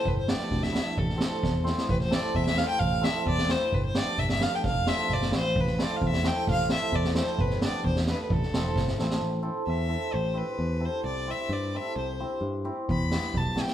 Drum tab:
SD |--ooooo-|-oo-o-oo|-oo--oo-|--oo-oo-|
BD |o---o---|o---o---|o---o---|o---o---|

SD |--o--oo-|o-ooooo-|-oo--oo-|ooo--oo-|
BD |o---o---|o---o---|o---o---|o---o---|

SD |-ooo-oo-|-oo-oooo|--------|--------|
BD |o---o---|o---o---|--------|--------|

SD |--------|--------|--oo--oo|
BD |--------|--------|o---o---|